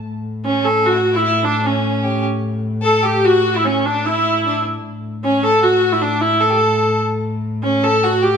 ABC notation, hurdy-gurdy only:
X:1
M:3/4
L:1/16
Q:1/4=150
K:Amix
V:1 name="Hurdy-gurdy"
z4 C2 A2 F3 E | E2 D2 C6 z2 | z4 A2 G2 F3 E | C2 D2 E6 z2 |
z4 C2 A2 F3 E | D2 E2 A6 z2 | z4 C2 A2 F2 G2 |]